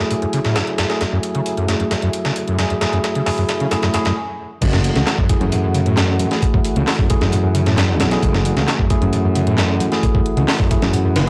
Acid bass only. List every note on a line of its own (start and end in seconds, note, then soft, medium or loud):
0.11 0.15 A2 medium
0.22 0.26 F#2 medium
0.34 0.40 C#3 loud
0.45 0.57 A2 loud
0.56 0.62 F#2 medium
0.78 0.85 F#2 medium
1.01 1.05 F#2 medium
1.13 1.19 F#2 loud
1.35 1.41 C#3 medium
1.57 1.67 F#2 medium
1.69 1.75 F#2 medium
1.80 1.84 F#2 medium
1.91 1.95 F#2 medium
2.03 2.09 F#2 loud
2.25 2.31 C#3 medium
2.48 2.57 F#2 medium
2.59 2.65 F#2 medium
2.71 2.74 F#2 medium
2.81 2.85 F#2 medium
2.93 2.99 F#2 loud
3.16 3.22 C#3 medium
3.27 3.30 F#2 medium
3.38 3.44 F#2 loud
3.61 3.67 C#3 medium
3.72 3.75 F#2 medium
3.83 3.89 F#2 loud
3.94 3.98 F#2 medium
4.06 4.12 F#2 loud
4.62 4.66 F#2 medium
4.74 4.80 F#2 loud
4.96 5.02 C#3 medium
5.19 5.28 F#2 medium
5.30 5.36 F#2 medium
5.41 5.45 F#2 medium
5.52 5.56 A2 medium
5.64 5.67 F#2 medium
5.75 5.81 C#3 loud
5.86 5.99 A2 loud
5.97 6.04 F#2 medium
6.20 6.26 F#2 medium
6.42 6.46 F#2 medium
6.54 6.60 F#2 loud
6.76 6.83 C#3 medium
6.99 7.08 F#2 medium
7.10 7.16 F#2 medium
7.21 7.25 F#2 medium
7.32 7.36 A2 medium
7.44 7.48 F#2 medium
7.55 7.61 C#3 loud
7.66 7.79 A2 loud
7.77 7.84 F#2 medium
8.00 8.06 F#2 medium
8.23 8.27 F#2 medium
8.34 8.40 F#2 loud
8.57 8.63 C#3 medium
8.79 8.89 F#2 medium
8.90 8.97 F#2 medium
9.02 9.06 F#2 medium
9.13 9.17 A2 medium
9.25 9.28 F#2 medium
9.36 9.42 C#3 loud
9.47 9.60 A2 loud
9.58 9.65 F#2 medium
9.81 9.87 F#2 medium
10.03 10.07 F#2 medium
10.15 10.21 F#2 loud
10.37 10.43 C#3 medium
10.60 10.69 F#2 medium
10.71 10.77 F#2 medium
10.82 10.86 F#2 medium
10.93 10.97 A2 medium
11.05 11.09 F#2 medium
11.16 11.22 C#3 loud